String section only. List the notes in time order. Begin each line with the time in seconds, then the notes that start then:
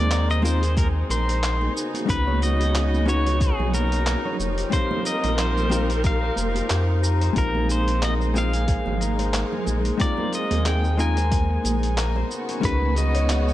Already playing: G#3 C4 D#4
1.76 C#3 B3 F#4
4.40 F3 G4 A#4
7.36 G#3 A#3
12.30 C#3 B3 F#4